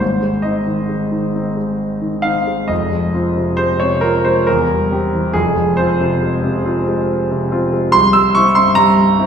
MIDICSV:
0, 0, Header, 1, 2, 480
1, 0, Start_track
1, 0, Tempo, 891530
1, 8, Time_signature, 3, 2, 24, 8
1, 2408, Tempo, 865801
1, 3848, Tempo, 843882
1, 5097, End_track
2, 0, Start_track
2, 0, Title_t, "Grand piano"
2, 0, Program_c, 0, 0
2, 0, Control_c, 0, 64, 127
2, 0, Note_on_c, 0, 32, 50
2, 0, Note_on_c, 0, 72, 70
2, 5, Note_on_c, 0, 44, 51
2, 16, Control_c, 0, 64, 0
2, 105, Control_c, 0, 64, 127
2, 119, Note_on_c, 0, 56, 39
2, 228, Note_on_c, 0, 75, 69
2, 238, Note_on_c, 0, 60, 38
2, 239, Note_off_c, 0, 72, 0
2, 242, Note_on_c, 0, 63, 43
2, 313, Note_off_c, 0, 56, 0
2, 349, Note_off_c, 0, 60, 0
2, 351, Note_off_c, 0, 63, 0
2, 360, Note_on_c, 0, 51, 40
2, 480, Note_on_c, 0, 56, 41
2, 554, Note_off_c, 0, 51, 0
2, 600, Note_on_c, 0, 51, 42
2, 675, Note_off_c, 0, 56, 0
2, 726, Note_on_c, 0, 60, 41
2, 729, Note_on_c, 0, 63, 44
2, 797, Note_off_c, 0, 51, 0
2, 836, Note_off_c, 0, 60, 0
2, 837, Note_off_c, 0, 63, 0
2, 843, Note_on_c, 0, 56, 42
2, 962, Note_off_c, 0, 75, 0
2, 1085, Note_on_c, 0, 51, 41
2, 1196, Note_on_c, 0, 77, 86
2, 1208, Note_on_c, 0, 60, 42
2, 1209, Note_on_c, 0, 63, 45
2, 1237, Note_off_c, 0, 56, 0
2, 1284, Note_off_c, 0, 51, 0
2, 1321, Note_off_c, 0, 60, 0
2, 1321, Note_off_c, 0, 63, 0
2, 1331, Note_on_c, 0, 56, 42
2, 1430, Note_off_c, 0, 32, 0
2, 1433, Note_off_c, 0, 44, 0
2, 1441, Note_on_c, 0, 75, 78
2, 1446, Note_on_c, 0, 29, 51
2, 1447, Note_off_c, 0, 77, 0
2, 1451, Note_on_c, 0, 41, 57
2, 1454, Note_off_c, 0, 56, 0
2, 1465, Control_c, 0, 64, 0
2, 1555, Control_c, 0, 64, 127
2, 1572, Note_on_c, 0, 56, 39
2, 1693, Note_on_c, 0, 60, 41
2, 1693, Note_on_c, 0, 65, 43
2, 1763, Note_off_c, 0, 56, 0
2, 1800, Note_off_c, 0, 60, 0
2, 1800, Note_off_c, 0, 65, 0
2, 1811, Note_on_c, 0, 48, 45
2, 1921, Note_on_c, 0, 72, 90
2, 1923, Note_off_c, 0, 75, 0
2, 1930, Note_on_c, 0, 56, 48
2, 2002, Note_off_c, 0, 48, 0
2, 2044, Note_on_c, 0, 73, 82
2, 2046, Note_off_c, 0, 72, 0
2, 2052, Note_on_c, 0, 48, 45
2, 2122, Note_off_c, 0, 56, 0
2, 2159, Note_on_c, 0, 70, 88
2, 2167, Note_off_c, 0, 73, 0
2, 2170, Note_on_c, 0, 60, 47
2, 2172, Note_on_c, 0, 65, 51
2, 2243, Note_off_c, 0, 48, 0
2, 2277, Note_off_c, 0, 60, 0
2, 2279, Note_off_c, 0, 65, 0
2, 2284, Note_off_c, 0, 70, 0
2, 2286, Note_on_c, 0, 72, 79
2, 2294, Note_on_c, 0, 56, 47
2, 2381, Note_off_c, 0, 29, 0
2, 2383, Note_off_c, 0, 41, 0
2, 2405, Note_on_c, 0, 70, 91
2, 2406, Note_off_c, 0, 72, 0
2, 2410, Note_off_c, 0, 56, 0
2, 2415, Note_on_c, 0, 40, 61
2, 2417, Control_c, 0, 64, 0
2, 2493, Control_c, 0, 64, 127
2, 2537, Note_on_c, 0, 55, 46
2, 2658, Note_on_c, 0, 60, 46
2, 2658, Note_on_c, 0, 67, 53
2, 2724, Note_off_c, 0, 55, 0
2, 2761, Note_off_c, 0, 60, 0
2, 2761, Note_off_c, 0, 67, 0
2, 2778, Note_on_c, 0, 52, 49
2, 2877, Note_off_c, 0, 40, 0
2, 2886, Note_off_c, 0, 70, 0
2, 2886, Note_on_c, 0, 68, 87
2, 2892, Note_on_c, 0, 29, 58
2, 2893, Note_off_c, 0, 52, 0
2, 2896, Note_on_c, 0, 41, 61
2, 2898, Control_c, 0, 64, 0
2, 2996, Control_c, 0, 64, 127
2, 3011, Note_on_c, 0, 56, 45
2, 3126, Note_on_c, 0, 72, 85
2, 3127, Note_off_c, 0, 68, 0
2, 3137, Note_on_c, 0, 60, 50
2, 3141, Note_on_c, 0, 65, 50
2, 3202, Note_off_c, 0, 56, 0
2, 3241, Note_off_c, 0, 60, 0
2, 3243, Note_off_c, 0, 65, 0
2, 3257, Note_on_c, 0, 48, 49
2, 3379, Note_on_c, 0, 56, 53
2, 3445, Note_off_c, 0, 48, 0
2, 3497, Note_on_c, 0, 48, 51
2, 3566, Note_off_c, 0, 56, 0
2, 3616, Note_on_c, 0, 60, 52
2, 3619, Note_on_c, 0, 65, 56
2, 3685, Note_off_c, 0, 48, 0
2, 3721, Note_off_c, 0, 60, 0
2, 3722, Note_off_c, 0, 65, 0
2, 3742, Note_on_c, 0, 56, 52
2, 3847, Note_off_c, 0, 72, 0
2, 3985, Note_on_c, 0, 48, 53
2, 4103, Note_on_c, 0, 60, 53
2, 4104, Note_on_c, 0, 65, 60
2, 4122, Note_off_c, 0, 56, 0
2, 4171, Note_off_c, 0, 48, 0
2, 4206, Note_off_c, 0, 60, 0
2, 4206, Note_off_c, 0, 65, 0
2, 4222, Note_on_c, 0, 56, 52
2, 4311, Note_off_c, 0, 29, 0
2, 4313, Note_off_c, 0, 41, 0
2, 4332, Note_on_c, 0, 84, 112
2, 4337, Note_off_c, 0, 56, 0
2, 4342, Control_c, 0, 64, 0
2, 4343, Note_on_c, 0, 36, 68
2, 4445, Control_c, 0, 64, 127
2, 4452, Note_off_c, 0, 84, 0
2, 4452, Note_on_c, 0, 88, 93
2, 4460, Note_on_c, 0, 55, 49
2, 4571, Note_off_c, 0, 88, 0
2, 4574, Note_on_c, 0, 85, 105
2, 4584, Note_on_c, 0, 60, 51
2, 4586, Note_on_c, 0, 64, 58
2, 4647, Note_off_c, 0, 55, 0
2, 4685, Note_off_c, 0, 60, 0
2, 4686, Note_off_c, 0, 64, 0
2, 4690, Note_on_c, 0, 84, 100
2, 4692, Note_off_c, 0, 85, 0
2, 4699, Note_on_c, 0, 43, 54
2, 4805, Note_on_c, 0, 82, 110
2, 4809, Note_off_c, 0, 84, 0
2, 4817, Note_on_c, 0, 55, 62
2, 4885, Note_off_c, 0, 43, 0
2, 4934, Note_on_c, 0, 43, 53
2, 5004, Note_off_c, 0, 55, 0
2, 5056, Note_on_c, 0, 60, 60
2, 5060, Note_on_c, 0, 64, 62
2, 5097, Note_off_c, 0, 36, 0
2, 5097, Note_off_c, 0, 43, 0
2, 5097, Note_off_c, 0, 60, 0
2, 5097, Note_off_c, 0, 64, 0
2, 5097, Note_off_c, 0, 82, 0
2, 5097, End_track
0, 0, End_of_file